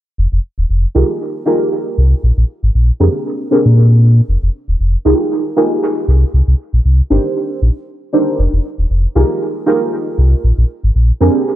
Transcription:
0.18 sub bass F1
0.32 sub bass F1
0.58 sub bass D#1
0.70 sub bass F1
0.95 sub bass C2, synth stab D#4 F4 G4 G#4 A#4
1.45 synth stab D#4 F4 G4 G#4 A#4
1.98 sub bass C2
2.23 sub bass A#1
2.37 sub bass A#1
2.63 sub bass G#1
2.75 sub bass A#1
3.00 sub bass F2, synth stab C4 D4 G4 G#4 A#4
3.51 synth stab C4 D4 G4 G#4 A#4
3.65 sub bass A#2
4.29 sub bass F1
4.42 sub bass F1
4.68 sub bass D#1
4.80 sub bass F1
5.05 sub bass C2, synth stab D#4 F4 G4 G#4 A#4
5.56 synth stab D#4 F4 G4 G#4 A#4
6.08 sub bass C2
6.34 sub bass C2
6.48 sub bass C2
6.73 sub bass A#1
6.85 sub bass C2
7.10 sub bass G1, synth stab D4 D#4 G4 A#4 C5
7.62 sub bass A#1
8.13 synth stab D4 D#4 G4 A#4 C5
8.39 sub bass F1
8.53 sub bass F1
8.78 sub bass D#1
8.90 sub bass F1
9.15 sub bass C2, synth stab D#4 F4 G4 G#4 A#4
9.66 synth stab D#4 F4 G4 G#4 A#4
10.18 sub bass C2
10.44 sub bass A#1
10.58 sub bass A#1
10.84 sub bass G#1
10.95 sub bass A#1
11.20 sub bass F2, synth stab C4 D4 G4 G#4 A#4

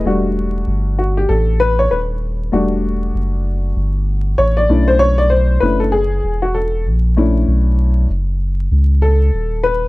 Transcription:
0.05 sub bass E1, upright piano G3 A3 D4 F#4
0.67 sub bass G1
0.99 upright piano F#4
1.17 upright piano G4
1.29 sub bass A1, upright piano A4
1.60 upright piano B4
1.79 upright piano C#5
1.91 sub bass D#1, upright piano B4
2.52 sub bass E1, upright piano G3 A3 D4 F#4
3.15 sub bass F#1
3.76 sub bass G1
4.38 sub bass A1, upright piano C#5
4.57 upright piano D5
4.69 sub bass B1, upright piano A3 C#4 D4 E4
4.88 upright piano C5
4.99 upright piano C#5
5.18 upright piano D5
5.30 upright piano C5
5.60 sub bass F#1, upright piano A3 C#4 D4 E4 B4
5.80 upright piano A4
5.92 upright piano G#4
6.24 sub bass E1
6.42 upright piano F#4
6.54 upright piano A4
6.86 sub bass A#1
7.17 upright piano A3 C#4 D4 E4
7.48 sub bass B1
8.10 sub bass F#1
8.71 sub bass C#2
9.02 upright piano A4
9.33 sub bass D#1
9.63 upright piano B4

